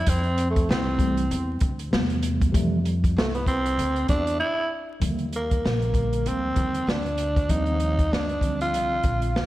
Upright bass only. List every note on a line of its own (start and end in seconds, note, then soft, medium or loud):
0.07 0.66 F2 loud
0.69 1.28 C2 loud
1.31 1.60 E2 loud
1.62 1.91 D2 medium
1.93 2.52 E2 loud
2.54 3.13 F2 loud
3.16 3.75 C2 loud
3.78 4.07 D2 medium
4.10 4.39 E2 medium
5.02 5.61 D#2 loud
5.64 6.23 A#1 medium
6.26 6.55 D2 loud
6.57 6.86 D#2 medium
6.87 7.46 D2 medium
7.50 8.08 D#2 loud
8.12 8.74 D2 medium
8.74 9.03 C2 medium
9.04 9.33 A#1 medium
9.36 9.46 D2 medium